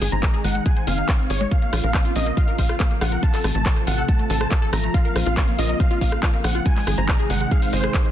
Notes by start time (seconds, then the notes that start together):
Already playing: C3 D#3 G#3 D#4 G#4
0.01 G#1 G#4, open hi-hat
0.12 G#1 C5 A#5, closed hi-hat
0.23 D#5, kick, clap, closed hi-hat
0.34 G#4, closed hi-hat
0.44 G#1 G#3 F#5, open hi-hat
0.55 G#3, closed hi-hat
0.66 G#4 G#5, kick, closed hi-hat
0.77 C5, closed hi-hat
0.87 F#1 C4 F5, open hi-hat
0.98 D#4, closed hi-hat
1.09 C4, kick, clap, closed hi-hat
1.19 C4, closed hi-hat
1.30 G#1 G#4 C#5, open hi-hat
1.41 G#3, closed hi-hat
1.51 C#3 F3 A#3 C4 F4 F5, kick, closed hi-hat
1.62 A#3, closed hi-hat
1.73 A#1 F4, cross-stick, open hi-hat
1.84 A#1 A#4 F5, closed hi-hat
1.94 C5, kick, clap, closed hi-hat
2.05 F4, closed hi-hat
2.16 A#1 A#3 D#5, open hi-hat
2.26 A#3, closed hi-hat
2.37 F4 F5, kick, closed hi-hat
2.48 A#4, closed hi-hat
2.58 A#1 C5 F5, kick, open hi-hat
2.69 F4, cross-stick, closed hi-hat
2.80 A#3, kick, clap, closed hi-hat
2.91 A#3, closed hi-hat
3.01 A#1 F4 F#5, cross-stick, open hi-hat
3.12 A#4, closed hi-hat
3.23 C3 A3 F4 A4 F5 A5, kick, closed hi-hat
3.34 A4, clap, open hi-hat
3.44 A1 A3, cross-stick, open hi-hat
3.55 A1 A3 A5, closed hi-hat
3.66 A4, kick, clap, closed hi-hat
3.76 C5, closed hi-hat
3.87 A1 F5 F#5, open hi-hat
3.98 A4, closed hi-hat
4.09 A3 A5, kick, closed hi-hat
4.19 A3, closed hi-hat
4.30 A1 A4 A5, open hi-hat
4.41 C5, cross-stick, closed hi-hat
4.51 F5, kick, clap, closed hi-hat
4.62 A4, closed hi-hat
4.73 A1 A3 A#5, cross-stick, open hi-hat
4.84 A3, closed hi-hat
4.94 C#3 A#3 C4 F4 F5, kick, closed hi-hat
5.05 A#4, closed hi-hat
5.16 A#1 C5, cross-stick, open hi-hat
5.26 A#1 F4 F5, closed hi-hat
5.37 A#3, kick, clap, closed hi-hat
5.48 A#3, closed hi-hat
5.58 A#1 F4 D#5, open hi-hat
5.69 A#4, closed hi-hat
5.80 C5 F5, kick, closed hi-hat
5.91 F4, closed hi-hat
6.01 A#1 A#3 F5, kick, open hi-hat
6.12 A#3, cross-stick, closed hi-hat
6.23 F4, kick, clap, closed hi-hat
6.34 A#4, closed hi-hat
6.44 A#1 C5 F#5, cross-stick, open hi-hat
6.55 F4, closed hi-hat
6.66 C3 D#3 G#3 D#4 G#4 G#5, kick, closed hi-hat
6.76 G#3, clap, open hi-hat
6.87 G#1 G#4, cross-stick, open hi-hat
6.98 G#1 C5 A#5, closed hi-hat
7.08 D#5, kick, clap, closed hi-hat
7.19 G#4, closed hi-hat
7.30 G#1 G#3 F#5, open hi-hat
7.41 G#3, closed hi-hat
7.51 G#4 F5, kick, closed hi-hat
7.62 C5, open hi-hat
7.73 G#1 C5 D#5, open hi-hat
7.84 G#4, cross-stick
7.94 kick, clap, closed hi-hat
8.05 G#3, closed hi-hat